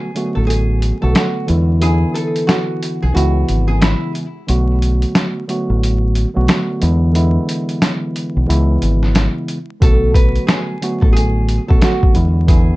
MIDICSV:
0, 0, Header, 1, 5, 480
1, 0, Start_track
1, 0, Tempo, 666667
1, 1309, Time_signature, 4, 2, 24, 8
1, 9189, End_track
2, 0, Start_track
2, 0, Title_t, "Nylon-string guitar"
2, 0, Program_c, 0, 24
2, 0, Note_on_c, 0, 68, 86
2, 231, Note_off_c, 0, 68, 0
2, 252, Note_on_c, 0, 69, 63
2, 333, Note_off_c, 0, 69, 0
2, 336, Note_on_c, 0, 68, 88
2, 707, Note_off_c, 0, 68, 0
2, 733, Note_on_c, 0, 69, 69
2, 817, Note_off_c, 0, 69, 0
2, 839, Note_on_c, 0, 66, 88
2, 1051, Note_off_c, 0, 66, 0
2, 1310, Note_on_c, 0, 68, 105
2, 1526, Note_off_c, 0, 68, 0
2, 1542, Note_on_c, 0, 69, 66
2, 1761, Note_off_c, 0, 69, 0
2, 1779, Note_on_c, 0, 66, 85
2, 2148, Note_off_c, 0, 66, 0
2, 2178, Note_on_c, 0, 68, 80
2, 2260, Note_off_c, 0, 68, 0
2, 2265, Note_on_c, 0, 66, 81
2, 2631, Note_off_c, 0, 66, 0
2, 2647, Note_on_c, 0, 68, 80
2, 2734, Note_off_c, 0, 68, 0
2, 2745, Note_on_c, 0, 64, 79
2, 2963, Note_off_c, 0, 64, 0
2, 7071, Note_on_c, 0, 69, 95
2, 7286, Note_off_c, 0, 69, 0
2, 7304, Note_on_c, 0, 71, 72
2, 7522, Note_off_c, 0, 71, 0
2, 7538, Note_on_c, 0, 68, 85
2, 7908, Note_off_c, 0, 68, 0
2, 7928, Note_on_c, 0, 69, 65
2, 8008, Note_off_c, 0, 69, 0
2, 8011, Note_on_c, 0, 68, 89
2, 8384, Note_off_c, 0, 68, 0
2, 8412, Note_on_c, 0, 69, 71
2, 8497, Note_off_c, 0, 69, 0
2, 8518, Note_on_c, 0, 66, 85
2, 8730, Note_off_c, 0, 66, 0
2, 8989, Note_on_c, 0, 68, 102
2, 9189, Note_off_c, 0, 68, 0
2, 9189, End_track
3, 0, Start_track
3, 0, Title_t, "Tine electric piano"
3, 0, Program_c, 1, 4
3, 102, Note_on_c, 1, 50, 86
3, 108, Note_on_c, 1, 54, 84
3, 113, Note_on_c, 1, 57, 86
3, 118, Note_on_c, 1, 59, 83
3, 123, Note_on_c, 1, 66, 94
3, 674, Note_off_c, 1, 50, 0
3, 677, Note_off_c, 1, 54, 0
3, 680, Note_off_c, 1, 57, 0
3, 682, Note_off_c, 1, 59, 0
3, 685, Note_off_c, 1, 66, 0
3, 724, Note_on_c, 1, 50, 89
3, 729, Note_on_c, 1, 54, 78
3, 735, Note_on_c, 1, 57, 82
3, 740, Note_on_c, 1, 59, 83
3, 745, Note_on_c, 1, 66, 100
3, 1045, Note_off_c, 1, 50, 0
3, 1053, Note_on_c, 1, 50, 90
3, 1059, Note_on_c, 1, 52, 89
3, 1061, Note_off_c, 1, 59, 0
3, 1064, Note_on_c, 1, 56, 84
3, 1065, Note_off_c, 1, 54, 0
3, 1068, Note_off_c, 1, 57, 0
3, 1070, Note_on_c, 1, 59, 85
3, 1073, Note_off_c, 1, 66, 0
3, 1074, Note_on_c, 1, 64, 105
3, 1286, Note_off_c, 1, 50, 0
3, 1289, Note_off_c, 1, 52, 0
3, 1292, Note_off_c, 1, 56, 0
3, 1294, Note_off_c, 1, 59, 0
3, 1296, Note_on_c, 1, 50, 89
3, 1297, Note_off_c, 1, 64, 0
3, 1301, Note_on_c, 1, 52, 84
3, 1312, Note_on_c, 1, 59, 85
3, 1317, Note_on_c, 1, 64, 99
3, 2251, Note_off_c, 1, 52, 0
3, 2255, Note_on_c, 1, 49, 92
3, 2260, Note_on_c, 1, 52, 88
3, 2262, Note_off_c, 1, 59, 0
3, 2263, Note_off_c, 1, 50, 0
3, 2266, Note_on_c, 1, 56, 80
3, 2267, Note_off_c, 1, 64, 0
3, 2271, Note_on_c, 1, 59, 88
3, 2276, Note_on_c, 1, 64, 101
3, 3047, Note_off_c, 1, 49, 0
3, 3050, Note_off_c, 1, 52, 0
3, 3052, Note_off_c, 1, 56, 0
3, 3055, Note_off_c, 1, 59, 0
3, 3058, Note_off_c, 1, 64, 0
3, 3218, Note_on_c, 1, 50, 90
3, 3223, Note_on_c, 1, 54, 83
3, 3228, Note_on_c, 1, 57, 88
3, 3234, Note_on_c, 1, 59, 83
3, 3239, Note_on_c, 1, 66, 102
3, 3899, Note_off_c, 1, 50, 0
3, 3902, Note_off_c, 1, 54, 0
3, 3904, Note_off_c, 1, 57, 0
3, 3907, Note_off_c, 1, 59, 0
3, 3910, Note_off_c, 1, 66, 0
3, 3941, Note_on_c, 1, 50, 86
3, 3947, Note_on_c, 1, 54, 86
3, 3953, Note_on_c, 1, 57, 86
3, 3958, Note_on_c, 1, 59, 82
3, 3963, Note_on_c, 1, 66, 95
3, 4514, Note_off_c, 1, 50, 0
3, 4517, Note_off_c, 1, 54, 0
3, 4520, Note_off_c, 1, 57, 0
3, 4522, Note_off_c, 1, 59, 0
3, 4525, Note_off_c, 1, 66, 0
3, 4562, Note_on_c, 1, 50, 91
3, 4567, Note_on_c, 1, 54, 80
3, 4573, Note_on_c, 1, 57, 83
3, 4578, Note_on_c, 1, 59, 82
3, 4583, Note_on_c, 1, 66, 102
3, 4884, Note_off_c, 1, 50, 0
3, 4893, Note_on_c, 1, 50, 90
3, 4898, Note_on_c, 1, 52, 85
3, 4900, Note_off_c, 1, 59, 0
3, 4904, Note_off_c, 1, 54, 0
3, 4904, Note_on_c, 1, 56, 90
3, 4907, Note_off_c, 1, 57, 0
3, 4909, Note_on_c, 1, 59, 86
3, 4912, Note_off_c, 1, 66, 0
3, 4914, Note_on_c, 1, 64, 106
3, 5126, Note_off_c, 1, 50, 0
3, 5128, Note_off_c, 1, 52, 0
3, 5131, Note_off_c, 1, 56, 0
3, 5133, Note_on_c, 1, 50, 92
3, 5134, Note_off_c, 1, 59, 0
3, 5137, Note_off_c, 1, 64, 0
3, 5139, Note_on_c, 1, 52, 82
3, 5145, Note_on_c, 1, 56, 83
3, 5149, Note_on_c, 1, 59, 84
3, 5155, Note_on_c, 1, 64, 105
3, 6092, Note_off_c, 1, 52, 0
3, 6095, Note_on_c, 1, 49, 94
3, 6097, Note_off_c, 1, 56, 0
3, 6100, Note_on_c, 1, 52, 86
3, 6101, Note_off_c, 1, 50, 0
3, 6102, Note_off_c, 1, 59, 0
3, 6105, Note_on_c, 1, 56, 80
3, 6107, Note_off_c, 1, 64, 0
3, 6110, Note_on_c, 1, 59, 89
3, 6116, Note_on_c, 1, 64, 101
3, 6887, Note_off_c, 1, 49, 0
3, 6890, Note_off_c, 1, 52, 0
3, 6892, Note_off_c, 1, 56, 0
3, 6895, Note_off_c, 1, 59, 0
3, 6898, Note_off_c, 1, 64, 0
3, 7057, Note_on_c, 1, 50, 92
3, 7062, Note_on_c, 1, 54, 83
3, 7067, Note_on_c, 1, 57, 87
3, 7073, Note_on_c, 1, 59, 85
3, 7078, Note_on_c, 1, 66, 98
3, 7739, Note_off_c, 1, 50, 0
3, 7741, Note_off_c, 1, 54, 0
3, 7744, Note_off_c, 1, 57, 0
3, 7747, Note_off_c, 1, 59, 0
3, 7749, Note_off_c, 1, 66, 0
3, 7781, Note_on_c, 1, 50, 85
3, 7787, Note_on_c, 1, 54, 82
3, 7792, Note_on_c, 1, 57, 85
3, 7797, Note_on_c, 1, 59, 86
3, 7803, Note_on_c, 1, 66, 95
3, 8354, Note_off_c, 1, 50, 0
3, 8357, Note_off_c, 1, 54, 0
3, 8359, Note_off_c, 1, 57, 0
3, 8362, Note_off_c, 1, 59, 0
3, 8365, Note_off_c, 1, 66, 0
3, 8402, Note_on_c, 1, 50, 89
3, 8407, Note_on_c, 1, 54, 78
3, 8412, Note_on_c, 1, 57, 82
3, 8417, Note_on_c, 1, 59, 83
3, 8423, Note_on_c, 1, 66, 99
3, 8724, Note_off_c, 1, 50, 0
3, 8732, Note_on_c, 1, 50, 91
3, 8737, Note_on_c, 1, 52, 85
3, 8739, Note_off_c, 1, 59, 0
3, 8742, Note_on_c, 1, 56, 85
3, 8744, Note_off_c, 1, 54, 0
3, 8746, Note_off_c, 1, 57, 0
3, 8748, Note_on_c, 1, 59, 84
3, 8752, Note_off_c, 1, 66, 0
3, 8753, Note_on_c, 1, 64, 103
3, 8966, Note_off_c, 1, 50, 0
3, 8968, Note_off_c, 1, 52, 0
3, 8971, Note_off_c, 1, 56, 0
3, 8973, Note_off_c, 1, 59, 0
3, 8975, Note_on_c, 1, 50, 91
3, 8976, Note_off_c, 1, 64, 0
3, 8980, Note_on_c, 1, 52, 81
3, 8990, Note_on_c, 1, 59, 86
3, 8996, Note_on_c, 1, 64, 105
3, 9189, Note_off_c, 1, 50, 0
3, 9189, Note_off_c, 1, 52, 0
3, 9189, Note_off_c, 1, 59, 0
3, 9189, Note_off_c, 1, 64, 0
3, 9189, End_track
4, 0, Start_track
4, 0, Title_t, "Fingered electric bass"
4, 0, Program_c, 2, 33
4, 263, Note_on_c, 2, 33, 87
4, 655, Note_off_c, 2, 33, 0
4, 743, Note_on_c, 2, 35, 89
4, 816, Note_off_c, 2, 35, 0
4, 1076, Note_on_c, 2, 40, 106
4, 1467, Note_off_c, 2, 40, 0
4, 2183, Note_on_c, 2, 35, 88
4, 2256, Note_off_c, 2, 35, 0
4, 2275, Note_on_c, 2, 37, 101
4, 2469, Note_off_c, 2, 37, 0
4, 2515, Note_on_c, 2, 32, 82
4, 2831, Note_off_c, 2, 32, 0
4, 3234, Note_on_c, 2, 35, 101
4, 3626, Note_off_c, 2, 35, 0
4, 4102, Note_on_c, 2, 33, 88
4, 4494, Note_off_c, 2, 33, 0
4, 4582, Note_on_c, 2, 35, 89
4, 4655, Note_off_c, 2, 35, 0
4, 4914, Note_on_c, 2, 40, 101
4, 5306, Note_off_c, 2, 40, 0
4, 6023, Note_on_c, 2, 35, 92
4, 6096, Note_off_c, 2, 35, 0
4, 6115, Note_on_c, 2, 37, 97
4, 6309, Note_off_c, 2, 37, 0
4, 6354, Note_on_c, 2, 32, 80
4, 6671, Note_off_c, 2, 32, 0
4, 7071, Note_on_c, 2, 35, 98
4, 7464, Note_off_c, 2, 35, 0
4, 7940, Note_on_c, 2, 33, 90
4, 8333, Note_off_c, 2, 33, 0
4, 8430, Note_on_c, 2, 35, 92
4, 8500, Note_off_c, 2, 35, 0
4, 8755, Note_on_c, 2, 40, 104
4, 9147, Note_off_c, 2, 40, 0
4, 9189, End_track
5, 0, Start_track
5, 0, Title_t, "Drums"
5, 113, Note_on_c, 9, 42, 74
5, 185, Note_off_c, 9, 42, 0
5, 361, Note_on_c, 9, 42, 83
5, 433, Note_off_c, 9, 42, 0
5, 591, Note_on_c, 9, 42, 80
5, 663, Note_off_c, 9, 42, 0
5, 828, Note_on_c, 9, 42, 92
5, 833, Note_on_c, 9, 38, 108
5, 900, Note_off_c, 9, 42, 0
5, 905, Note_off_c, 9, 38, 0
5, 1068, Note_on_c, 9, 42, 69
5, 1140, Note_off_c, 9, 42, 0
5, 1308, Note_on_c, 9, 42, 92
5, 1380, Note_off_c, 9, 42, 0
5, 1551, Note_on_c, 9, 42, 78
5, 1623, Note_off_c, 9, 42, 0
5, 1697, Note_on_c, 9, 42, 51
5, 1769, Note_off_c, 9, 42, 0
5, 1791, Note_on_c, 9, 38, 116
5, 1795, Note_on_c, 9, 42, 77
5, 1863, Note_off_c, 9, 38, 0
5, 1867, Note_off_c, 9, 42, 0
5, 2034, Note_on_c, 9, 42, 75
5, 2106, Note_off_c, 9, 42, 0
5, 2281, Note_on_c, 9, 42, 85
5, 2353, Note_off_c, 9, 42, 0
5, 2510, Note_on_c, 9, 42, 78
5, 2582, Note_off_c, 9, 42, 0
5, 2748, Note_on_c, 9, 42, 93
5, 2752, Note_on_c, 9, 38, 111
5, 2820, Note_off_c, 9, 42, 0
5, 2824, Note_off_c, 9, 38, 0
5, 2988, Note_on_c, 9, 42, 68
5, 3060, Note_off_c, 9, 42, 0
5, 3229, Note_on_c, 9, 42, 93
5, 3301, Note_off_c, 9, 42, 0
5, 3472, Note_on_c, 9, 42, 77
5, 3544, Note_off_c, 9, 42, 0
5, 3615, Note_on_c, 9, 42, 52
5, 3687, Note_off_c, 9, 42, 0
5, 3709, Note_on_c, 9, 38, 115
5, 3713, Note_on_c, 9, 42, 76
5, 3781, Note_off_c, 9, 38, 0
5, 3785, Note_off_c, 9, 42, 0
5, 3953, Note_on_c, 9, 42, 74
5, 4025, Note_off_c, 9, 42, 0
5, 4201, Note_on_c, 9, 42, 85
5, 4273, Note_off_c, 9, 42, 0
5, 4430, Note_on_c, 9, 42, 80
5, 4502, Note_off_c, 9, 42, 0
5, 4668, Note_on_c, 9, 42, 93
5, 4672, Note_on_c, 9, 38, 108
5, 4740, Note_off_c, 9, 42, 0
5, 4744, Note_off_c, 9, 38, 0
5, 4908, Note_on_c, 9, 42, 71
5, 4980, Note_off_c, 9, 42, 0
5, 5149, Note_on_c, 9, 42, 91
5, 5221, Note_off_c, 9, 42, 0
5, 5391, Note_on_c, 9, 42, 78
5, 5463, Note_off_c, 9, 42, 0
5, 5536, Note_on_c, 9, 42, 51
5, 5608, Note_off_c, 9, 42, 0
5, 5629, Note_on_c, 9, 38, 117
5, 5633, Note_on_c, 9, 42, 79
5, 5701, Note_off_c, 9, 38, 0
5, 5705, Note_off_c, 9, 42, 0
5, 5873, Note_on_c, 9, 42, 77
5, 5945, Note_off_c, 9, 42, 0
5, 6121, Note_on_c, 9, 42, 85
5, 6193, Note_off_c, 9, 42, 0
5, 6351, Note_on_c, 9, 42, 80
5, 6423, Note_off_c, 9, 42, 0
5, 6501, Note_on_c, 9, 38, 36
5, 6573, Note_off_c, 9, 38, 0
5, 6588, Note_on_c, 9, 42, 92
5, 6593, Note_on_c, 9, 38, 105
5, 6660, Note_off_c, 9, 42, 0
5, 6665, Note_off_c, 9, 38, 0
5, 6828, Note_on_c, 9, 42, 72
5, 6900, Note_off_c, 9, 42, 0
5, 7069, Note_on_c, 9, 36, 115
5, 7070, Note_on_c, 9, 42, 94
5, 7141, Note_off_c, 9, 36, 0
5, 7142, Note_off_c, 9, 42, 0
5, 7304, Note_on_c, 9, 36, 89
5, 7311, Note_on_c, 9, 42, 74
5, 7376, Note_off_c, 9, 36, 0
5, 7383, Note_off_c, 9, 42, 0
5, 7456, Note_on_c, 9, 42, 52
5, 7528, Note_off_c, 9, 42, 0
5, 7549, Note_on_c, 9, 38, 115
5, 7553, Note_on_c, 9, 42, 78
5, 7621, Note_off_c, 9, 38, 0
5, 7625, Note_off_c, 9, 42, 0
5, 7794, Note_on_c, 9, 42, 73
5, 7866, Note_off_c, 9, 42, 0
5, 7937, Note_on_c, 9, 36, 95
5, 8009, Note_off_c, 9, 36, 0
5, 8039, Note_on_c, 9, 42, 86
5, 8111, Note_off_c, 9, 42, 0
5, 8269, Note_on_c, 9, 42, 80
5, 8341, Note_off_c, 9, 42, 0
5, 8427, Note_on_c, 9, 36, 100
5, 8499, Note_off_c, 9, 36, 0
5, 8507, Note_on_c, 9, 42, 94
5, 8511, Note_on_c, 9, 38, 111
5, 8579, Note_off_c, 9, 42, 0
5, 8583, Note_off_c, 9, 38, 0
5, 8661, Note_on_c, 9, 36, 89
5, 8733, Note_off_c, 9, 36, 0
5, 8746, Note_on_c, 9, 42, 71
5, 8818, Note_off_c, 9, 42, 0
5, 8988, Note_on_c, 9, 36, 110
5, 8989, Note_on_c, 9, 42, 90
5, 9060, Note_off_c, 9, 36, 0
5, 9061, Note_off_c, 9, 42, 0
5, 9189, End_track
0, 0, End_of_file